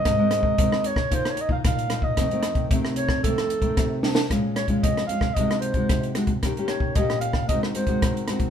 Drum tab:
HH |x-x-x-x-xxx-xxx-|xxxxx-x-xxxxx---|x-xxxxx-xxxxxxxx|xxx-xxx-x-xxxxxx|
SD |r-r--r-r-r--r-r-|r-r--r-r-r--r-oo|r-r--r-r-r--r-r-|r-r--r-r-r--r-r-|
BD |o--oo--oo--oo--o|o--oo--oo--oo---|o--oo--oo--oo--o|o--oo--oo--oo--o|